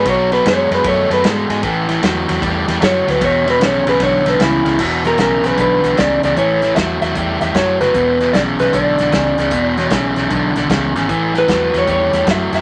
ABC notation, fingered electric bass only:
X:1
M:4/4
L:1/8
Q:"Swing" 1/4=152
K:Emix
V:1 name="Fingered electric bass" clef=bass
B,,,2 F,, F,, F,, F,, G,, G,, | A,,,2 E,, E,, E,, E,, F,, D,, | E,,,2 B,,, B,,, B,,, B,,, C,, C,, | E,,,2 B,,, B,,, B,,, B,,, C,, C,, |
A,,,2 E,, E,, E,, E,, F,, F,,, | E,,,2 B,,, B,,, B,,, B,,, C,, C,, | E,,,2 B,,, B,,, B,,, B,,, C,, G,,, | A,,,2 E,, E,, E,, E,, F,, F,, |]